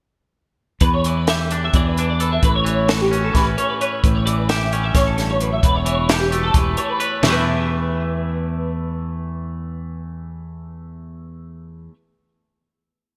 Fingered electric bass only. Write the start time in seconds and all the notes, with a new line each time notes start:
0.81 E2
1.73 E2
2.43 A1
3.34 A1
4.04 A1
4.94 A1
5.63 E1
6.54 E1
7.23 E2